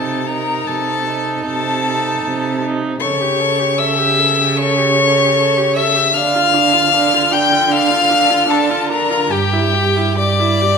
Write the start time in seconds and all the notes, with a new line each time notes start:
Already playing: C3 D#4 A4 A5
0.27 D#4 A#4 A#5
0.67 C3 A4 A5
1.07 D#4
1.45 C3 A4 A5
1.85 D#4
2.24 C3
2.63 D#4
3.00 C#3 A4 C#5 C#6
3.21 G4
3.40 A4
3.59 G4
3.79 A4 E5 E6
3.98 G4
4.19 A4
4.38 G4
4.57 A4 C#5 C#6
4.77 G4
4.98 A4
5.17 G4
5.37 A4
5.57 G4
5.76 A4 E5 E6
5.96 G4
6.14 D3 D4 F5 F6
6.35 F4
6.54 D4
6.73 F4
6.92 D4
7.13 F4
7.32 D4 G5 G6
7.52 F4
7.71 D4 F5 F6
7.91 F4
8.11 D4
8.30 F4
8.50 D4 A4 A5
8.70 F4
8.89 D4 A#4 A#5
9.10 F4
9.31 G2 G4 G5
9.53 E4
9.74 G4
9.96 E4
10.19 G4 D5 D6
10.39 E4
10.62 G4